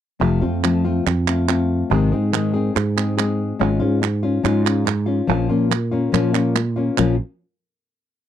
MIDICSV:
0, 0, Header, 1, 5, 480
1, 0, Start_track
1, 0, Key_signature, -5, "minor"
1, 0, Tempo, 423131
1, 244, Time_signature, 4, 2, 24, 8
1, 9394, End_track
2, 0, Start_track
2, 0, Title_t, "Nylon-string guitar"
2, 0, Program_c, 0, 24
2, 224, Note_on_c, 0, 48, 66
2, 229, Note_on_c, 0, 53, 72
2, 240, Note_on_c, 0, 57, 80
2, 244, Note_on_c, 0, 60, 73
2, 248, Note_on_c, 0, 65, 82
2, 455, Note_off_c, 0, 65, 0
2, 464, Note_off_c, 0, 60, 0
2, 466, Note_off_c, 0, 48, 0
2, 468, Note_off_c, 0, 53, 0
2, 468, Note_on_c, 0, 65, 50
2, 474, Note_off_c, 0, 57, 0
2, 477, Note_on_c, 0, 60, 51
2, 485, Note_on_c, 0, 57, 37
2, 708, Note_off_c, 0, 57, 0
2, 708, Note_off_c, 0, 65, 0
2, 713, Note_off_c, 0, 60, 0
2, 717, Note_on_c, 0, 53, 51
2, 721, Note_on_c, 0, 57, 53
2, 727, Note_on_c, 0, 60, 59
2, 736, Note_on_c, 0, 65, 57
2, 946, Note_off_c, 0, 65, 0
2, 953, Note_off_c, 0, 53, 0
2, 955, Note_off_c, 0, 57, 0
2, 958, Note_off_c, 0, 60, 0
2, 959, Note_on_c, 0, 65, 53
2, 971, Note_on_c, 0, 60, 48
2, 984, Note_on_c, 0, 57, 44
2, 1195, Note_off_c, 0, 65, 0
2, 1196, Note_off_c, 0, 57, 0
2, 1198, Note_off_c, 0, 60, 0
2, 1445, Note_on_c, 0, 65, 51
2, 1455, Note_on_c, 0, 60, 44
2, 1463, Note_on_c, 0, 57, 42
2, 1666, Note_off_c, 0, 65, 0
2, 1676, Note_off_c, 0, 60, 0
2, 1680, Note_on_c, 0, 65, 54
2, 1687, Note_off_c, 0, 57, 0
2, 1690, Note_on_c, 0, 60, 48
2, 1704, Note_on_c, 0, 57, 41
2, 2155, Note_on_c, 0, 48, 81
2, 2156, Note_off_c, 0, 65, 0
2, 2159, Note_off_c, 0, 60, 0
2, 2166, Note_off_c, 0, 57, 0
2, 2166, Note_on_c, 0, 51, 80
2, 2170, Note_on_c, 0, 56, 84
2, 2172, Note_on_c, 0, 60, 87
2, 2179, Note_on_c, 0, 68, 78
2, 2389, Note_off_c, 0, 68, 0
2, 2394, Note_off_c, 0, 48, 0
2, 2395, Note_off_c, 0, 60, 0
2, 2399, Note_off_c, 0, 51, 0
2, 2401, Note_off_c, 0, 56, 0
2, 2403, Note_on_c, 0, 68, 50
2, 2409, Note_on_c, 0, 60, 46
2, 2423, Note_on_c, 0, 56, 44
2, 2629, Note_off_c, 0, 56, 0
2, 2633, Note_off_c, 0, 60, 0
2, 2633, Note_on_c, 0, 51, 54
2, 2638, Note_off_c, 0, 68, 0
2, 2642, Note_on_c, 0, 56, 58
2, 2647, Note_on_c, 0, 60, 54
2, 2652, Note_on_c, 0, 68, 61
2, 2863, Note_off_c, 0, 68, 0
2, 2873, Note_off_c, 0, 51, 0
2, 2876, Note_on_c, 0, 68, 55
2, 2878, Note_off_c, 0, 56, 0
2, 2880, Note_off_c, 0, 60, 0
2, 2893, Note_on_c, 0, 60, 45
2, 2904, Note_on_c, 0, 56, 44
2, 3112, Note_off_c, 0, 60, 0
2, 3115, Note_off_c, 0, 56, 0
2, 3115, Note_off_c, 0, 68, 0
2, 3365, Note_on_c, 0, 68, 54
2, 3372, Note_on_c, 0, 60, 47
2, 3380, Note_on_c, 0, 56, 42
2, 3587, Note_off_c, 0, 68, 0
2, 3594, Note_off_c, 0, 60, 0
2, 3601, Note_on_c, 0, 68, 54
2, 3606, Note_off_c, 0, 56, 0
2, 3608, Note_on_c, 0, 60, 50
2, 3621, Note_on_c, 0, 56, 45
2, 4064, Note_off_c, 0, 56, 0
2, 4077, Note_off_c, 0, 68, 0
2, 4078, Note_on_c, 0, 56, 82
2, 4080, Note_off_c, 0, 60, 0
2, 4088, Note_on_c, 0, 61, 80
2, 4101, Note_on_c, 0, 65, 82
2, 4291, Note_off_c, 0, 65, 0
2, 4305, Note_on_c, 0, 65, 55
2, 4310, Note_off_c, 0, 61, 0
2, 4315, Note_off_c, 0, 56, 0
2, 4324, Note_on_c, 0, 61, 43
2, 4546, Note_off_c, 0, 61, 0
2, 4548, Note_off_c, 0, 65, 0
2, 4797, Note_on_c, 0, 65, 55
2, 4814, Note_on_c, 0, 61, 44
2, 5024, Note_off_c, 0, 61, 0
2, 5031, Note_on_c, 0, 56, 75
2, 5034, Note_off_c, 0, 65, 0
2, 5037, Note_on_c, 0, 61, 76
2, 5050, Note_on_c, 0, 65, 88
2, 5254, Note_off_c, 0, 65, 0
2, 5268, Note_on_c, 0, 65, 54
2, 5270, Note_off_c, 0, 56, 0
2, 5274, Note_off_c, 0, 61, 0
2, 5291, Note_on_c, 0, 61, 42
2, 5499, Note_off_c, 0, 61, 0
2, 5502, Note_off_c, 0, 65, 0
2, 5739, Note_on_c, 0, 65, 51
2, 5759, Note_on_c, 0, 61, 38
2, 5982, Note_off_c, 0, 61, 0
2, 5982, Note_on_c, 0, 53, 72
2, 5984, Note_off_c, 0, 65, 0
2, 5991, Note_on_c, 0, 58, 79
2, 5995, Note_on_c, 0, 61, 79
2, 6003, Note_on_c, 0, 65, 83
2, 6218, Note_off_c, 0, 65, 0
2, 6225, Note_off_c, 0, 53, 0
2, 6226, Note_off_c, 0, 61, 0
2, 6229, Note_off_c, 0, 58, 0
2, 6232, Note_on_c, 0, 65, 56
2, 6240, Note_on_c, 0, 61, 49
2, 6246, Note_on_c, 0, 58, 42
2, 6463, Note_off_c, 0, 58, 0
2, 6464, Note_off_c, 0, 65, 0
2, 6465, Note_off_c, 0, 61, 0
2, 6709, Note_on_c, 0, 65, 50
2, 6719, Note_on_c, 0, 61, 51
2, 6730, Note_on_c, 0, 58, 41
2, 6938, Note_off_c, 0, 58, 0
2, 6942, Note_on_c, 0, 53, 70
2, 6944, Note_off_c, 0, 61, 0
2, 6947, Note_off_c, 0, 65, 0
2, 6951, Note_on_c, 0, 58, 74
2, 6957, Note_on_c, 0, 61, 77
2, 6964, Note_on_c, 0, 65, 86
2, 7170, Note_off_c, 0, 65, 0
2, 7181, Note_off_c, 0, 61, 0
2, 7183, Note_off_c, 0, 53, 0
2, 7183, Note_on_c, 0, 65, 54
2, 7188, Note_off_c, 0, 58, 0
2, 7194, Note_on_c, 0, 61, 45
2, 7201, Note_on_c, 0, 58, 44
2, 7424, Note_off_c, 0, 58, 0
2, 7424, Note_off_c, 0, 61, 0
2, 7424, Note_off_c, 0, 65, 0
2, 7669, Note_on_c, 0, 65, 50
2, 7684, Note_on_c, 0, 61, 42
2, 7689, Note_on_c, 0, 58, 39
2, 7903, Note_off_c, 0, 58, 0
2, 7906, Note_off_c, 0, 65, 0
2, 7909, Note_off_c, 0, 61, 0
2, 7910, Note_on_c, 0, 46, 69
2, 7912, Note_on_c, 0, 53, 73
2, 7916, Note_on_c, 0, 58, 73
2, 7922, Note_on_c, 0, 61, 73
2, 7928, Note_on_c, 0, 65, 81
2, 8108, Note_off_c, 0, 46, 0
2, 8109, Note_off_c, 0, 53, 0
2, 8111, Note_off_c, 0, 58, 0
2, 8114, Note_off_c, 0, 61, 0
2, 8117, Note_off_c, 0, 65, 0
2, 9394, End_track
3, 0, Start_track
3, 0, Title_t, "Fretless electric bass"
3, 0, Program_c, 1, 35
3, 238, Note_on_c, 1, 29, 85
3, 455, Note_off_c, 1, 29, 0
3, 477, Note_on_c, 1, 41, 78
3, 1124, Note_off_c, 1, 41, 0
3, 1208, Note_on_c, 1, 41, 82
3, 2065, Note_off_c, 1, 41, 0
3, 2170, Note_on_c, 1, 32, 94
3, 2385, Note_off_c, 1, 32, 0
3, 2414, Note_on_c, 1, 44, 75
3, 3054, Note_off_c, 1, 44, 0
3, 3132, Note_on_c, 1, 44, 87
3, 3986, Note_off_c, 1, 44, 0
3, 4091, Note_on_c, 1, 32, 95
3, 4305, Note_off_c, 1, 32, 0
3, 4328, Note_on_c, 1, 44, 80
3, 4969, Note_off_c, 1, 44, 0
3, 5042, Note_on_c, 1, 44, 87
3, 5898, Note_off_c, 1, 44, 0
3, 6002, Note_on_c, 1, 34, 92
3, 6218, Note_off_c, 1, 34, 0
3, 6249, Note_on_c, 1, 46, 79
3, 6887, Note_off_c, 1, 46, 0
3, 6961, Note_on_c, 1, 46, 84
3, 7815, Note_off_c, 1, 46, 0
3, 7926, Note_on_c, 1, 34, 83
3, 8147, Note_off_c, 1, 34, 0
3, 9394, End_track
4, 0, Start_track
4, 0, Title_t, "Muted nylon-string guitar strokes"
4, 1203, Note_on_c, 9, 29, 64
4, 1317, Note_off_c, 9, 29, 0
4, 3121, Note_on_c, 9, 29, 61
4, 3235, Note_off_c, 9, 29, 0
4, 4556, Note_on_c, 9, 29, 70
4, 4669, Note_off_c, 9, 29, 0
4, 5503, Note_on_c, 9, 29, 66
4, 5616, Note_off_c, 9, 29, 0
4, 6472, Note_on_c, 9, 29, 67
4, 6585, Note_off_c, 9, 29, 0
4, 7433, Note_on_c, 9, 29, 65
4, 7546, Note_off_c, 9, 29, 0
4, 9394, End_track
5, 0, Start_track
5, 0, Title_t, "Drums"
5, 727, Note_on_c, 9, 39, 76
5, 840, Note_off_c, 9, 39, 0
5, 1213, Note_on_c, 9, 39, 82
5, 1326, Note_off_c, 9, 39, 0
5, 1449, Note_on_c, 9, 39, 73
5, 1563, Note_off_c, 9, 39, 0
5, 1688, Note_on_c, 9, 39, 81
5, 1802, Note_off_c, 9, 39, 0
5, 2653, Note_on_c, 9, 39, 83
5, 2766, Note_off_c, 9, 39, 0
5, 3138, Note_on_c, 9, 39, 83
5, 3251, Note_off_c, 9, 39, 0
5, 3381, Note_on_c, 9, 39, 78
5, 3494, Note_off_c, 9, 39, 0
5, 3618, Note_on_c, 9, 39, 80
5, 3731, Note_off_c, 9, 39, 0
5, 4575, Note_on_c, 9, 39, 80
5, 4689, Note_off_c, 9, 39, 0
5, 5051, Note_on_c, 9, 39, 79
5, 5164, Note_off_c, 9, 39, 0
5, 5294, Note_on_c, 9, 39, 77
5, 5407, Note_off_c, 9, 39, 0
5, 5529, Note_on_c, 9, 39, 81
5, 5643, Note_off_c, 9, 39, 0
5, 6487, Note_on_c, 9, 39, 76
5, 6600, Note_off_c, 9, 39, 0
5, 6969, Note_on_c, 9, 39, 75
5, 7083, Note_off_c, 9, 39, 0
5, 7201, Note_on_c, 9, 39, 80
5, 7314, Note_off_c, 9, 39, 0
5, 7442, Note_on_c, 9, 39, 76
5, 7555, Note_off_c, 9, 39, 0
5, 7915, Note_on_c, 9, 39, 94
5, 8029, Note_off_c, 9, 39, 0
5, 9394, End_track
0, 0, End_of_file